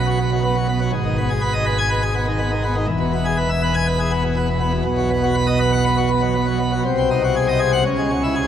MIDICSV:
0, 0, Header, 1, 2, 480
1, 0, Start_track
1, 0, Key_signature, 4, "major"
1, 0, Tempo, 491803
1, 911, Time_signature, 4, 2, 24, 8
1, 4750, Tempo, 498339
1, 8223, End_track
2, 0, Start_track
2, 0, Title_t, "Pipe organ"
2, 0, Program_c, 0, 19
2, 0, Note_on_c, 0, 35, 80
2, 0, Note_on_c, 0, 47, 82
2, 70, Note_on_c, 0, 66, 73
2, 176, Note_off_c, 0, 66, 0
2, 181, Note_on_c, 0, 59, 68
2, 292, Note_off_c, 0, 59, 0
2, 307, Note_on_c, 0, 54, 63
2, 415, Note_off_c, 0, 54, 0
2, 428, Note_on_c, 0, 59, 67
2, 537, Note_off_c, 0, 59, 0
2, 543, Note_on_c, 0, 54, 68
2, 654, Note_off_c, 0, 54, 0
2, 669, Note_on_c, 0, 59, 66
2, 777, Note_off_c, 0, 59, 0
2, 786, Note_on_c, 0, 54, 72
2, 870, Note_off_c, 0, 35, 0
2, 872, Note_off_c, 0, 47, 0
2, 890, Note_off_c, 0, 54, 0
2, 902, Note_on_c, 0, 44, 94
2, 903, Note_on_c, 0, 32, 85
2, 1027, Note_on_c, 0, 51, 63
2, 1135, Note_off_c, 0, 51, 0
2, 1152, Note_on_c, 0, 59, 70
2, 1257, Note_off_c, 0, 59, 0
2, 1268, Note_on_c, 0, 68, 70
2, 1375, Note_off_c, 0, 68, 0
2, 1378, Note_on_c, 0, 71, 70
2, 1489, Note_off_c, 0, 71, 0
2, 1498, Note_on_c, 0, 75, 71
2, 1609, Note_off_c, 0, 75, 0
2, 1617, Note_on_c, 0, 71, 76
2, 1728, Note_off_c, 0, 71, 0
2, 1738, Note_on_c, 0, 80, 97
2, 1849, Note_off_c, 0, 80, 0
2, 1856, Note_on_c, 0, 71, 81
2, 1968, Note_off_c, 0, 71, 0
2, 1975, Note_on_c, 0, 68, 76
2, 2087, Note_off_c, 0, 68, 0
2, 2097, Note_on_c, 0, 59, 76
2, 2208, Note_off_c, 0, 59, 0
2, 2214, Note_on_c, 0, 51, 68
2, 2327, Note_off_c, 0, 51, 0
2, 2329, Note_on_c, 0, 59, 73
2, 2444, Note_off_c, 0, 59, 0
2, 2447, Note_on_c, 0, 51, 72
2, 2563, Note_off_c, 0, 51, 0
2, 2570, Note_on_c, 0, 59, 69
2, 2685, Note_off_c, 0, 59, 0
2, 2689, Note_on_c, 0, 51, 72
2, 2784, Note_off_c, 0, 44, 0
2, 2785, Note_off_c, 0, 32, 0
2, 2799, Note_off_c, 0, 51, 0
2, 2804, Note_on_c, 0, 40, 90
2, 2805, Note_on_c, 0, 28, 98
2, 2924, Note_on_c, 0, 47, 66
2, 3042, Note_off_c, 0, 47, 0
2, 3058, Note_on_c, 0, 59, 74
2, 3171, Note_off_c, 0, 59, 0
2, 3175, Note_on_c, 0, 68, 72
2, 3289, Note_off_c, 0, 68, 0
2, 3293, Note_on_c, 0, 71, 74
2, 3408, Note_off_c, 0, 71, 0
2, 3411, Note_on_c, 0, 76, 71
2, 3527, Note_off_c, 0, 76, 0
2, 3540, Note_on_c, 0, 71, 80
2, 3652, Note_off_c, 0, 71, 0
2, 3654, Note_on_c, 0, 80, 100
2, 3769, Note_off_c, 0, 80, 0
2, 3778, Note_on_c, 0, 71, 86
2, 3891, Note_off_c, 0, 71, 0
2, 3899, Note_on_c, 0, 68, 74
2, 4012, Note_off_c, 0, 68, 0
2, 4013, Note_on_c, 0, 59, 75
2, 4128, Note_off_c, 0, 59, 0
2, 4139, Note_on_c, 0, 47, 72
2, 4251, Note_off_c, 0, 47, 0
2, 4262, Note_on_c, 0, 59, 72
2, 4372, Note_off_c, 0, 59, 0
2, 4377, Note_on_c, 0, 47, 71
2, 4489, Note_off_c, 0, 47, 0
2, 4494, Note_on_c, 0, 59, 68
2, 4607, Note_off_c, 0, 59, 0
2, 4612, Note_on_c, 0, 47, 74
2, 4699, Note_off_c, 0, 28, 0
2, 4699, Note_off_c, 0, 40, 0
2, 4712, Note_off_c, 0, 47, 0
2, 4727, Note_on_c, 0, 35, 94
2, 4732, Note_on_c, 0, 47, 90
2, 4856, Note_on_c, 0, 54, 65
2, 4968, Note_off_c, 0, 54, 0
2, 4977, Note_on_c, 0, 59, 66
2, 5089, Note_off_c, 0, 59, 0
2, 5104, Note_on_c, 0, 66, 69
2, 5212, Note_on_c, 0, 71, 73
2, 5213, Note_off_c, 0, 66, 0
2, 5325, Note_off_c, 0, 71, 0
2, 5329, Note_on_c, 0, 75, 76
2, 5443, Note_off_c, 0, 75, 0
2, 5450, Note_on_c, 0, 71, 77
2, 5563, Note_off_c, 0, 71, 0
2, 5577, Note_on_c, 0, 78, 94
2, 5687, Note_off_c, 0, 78, 0
2, 5693, Note_on_c, 0, 71, 77
2, 5804, Note_off_c, 0, 71, 0
2, 5817, Note_on_c, 0, 66, 71
2, 5926, Note_off_c, 0, 66, 0
2, 5936, Note_on_c, 0, 59, 73
2, 6046, Note_off_c, 0, 59, 0
2, 6055, Note_on_c, 0, 54, 61
2, 6165, Note_off_c, 0, 54, 0
2, 6172, Note_on_c, 0, 59, 67
2, 6284, Note_off_c, 0, 59, 0
2, 6289, Note_on_c, 0, 54, 67
2, 6401, Note_off_c, 0, 54, 0
2, 6412, Note_on_c, 0, 59, 66
2, 6523, Note_off_c, 0, 59, 0
2, 6534, Note_on_c, 0, 54, 67
2, 6612, Note_off_c, 0, 35, 0
2, 6614, Note_off_c, 0, 47, 0
2, 6639, Note_off_c, 0, 54, 0
2, 6663, Note_on_c, 0, 36, 83
2, 6663, Note_on_c, 0, 48, 87
2, 6784, Note_on_c, 0, 60, 61
2, 6890, Note_off_c, 0, 60, 0
2, 6910, Note_on_c, 0, 63, 61
2, 7013, Note_off_c, 0, 63, 0
2, 7037, Note_on_c, 0, 66, 60
2, 7137, Note_off_c, 0, 66, 0
2, 7152, Note_on_c, 0, 68, 67
2, 7255, Note_off_c, 0, 68, 0
2, 7270, Note_on_c, 0, 75, 64
2, 7374, Note_off_c, 0, 75, 0
2, 7377, Note_on_c, 0, 68, 71
2, 7487, Note_off_c, 0, 68, 0
2, 7505, Note_on_c, 0, 78, 89
2, 7596, Note_off_c, 0, 36, 0
2, 7596, Note_off_c, 0, 48, 0
2, 7607, Note_off_c, 0, 78, 0
2, 7626, Note_on_c, 0, 37, 79
2, 7626, Note_on_c, 0, 49, 82
2, 7751, Note_on_c, 0, 56, 59
2, 7856, Note_off_c, 0, 56, 0
2, 7870, Note_on_c, 0, 61, 63
2, 7976, Note_off_c, 0, 61, 0
2, 7994, Note_on_c, 0, 64, 58
2, 8100, Note_off_c, 0, 64, 0
2, 8109, Note_on_c, 0, 68, 61
2, 8218, Note_off_c, 0, 68, 0
2, 8223, Note_off_c, 0, 37, 0
2, 8223, Note_off_c, 0, 49, 0
2, 8223, End_track
0, 0, End_of_file